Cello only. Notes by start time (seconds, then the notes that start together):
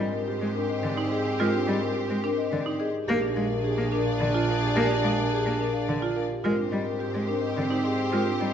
0.41 G#3
0.83 D3
1.39 G#3
1.68 G3
2.10 G#3
2.52 D3
3.08 A#3
3.36 G#3
3.77 A#3
4.20 D3
4.76 A#3
5.03 G#3
5.46 A#3
5.88 D3
6.45 G#3
6.72 G3
7.14 G#3
7.57 D3
8.12 G#3
8.40 G3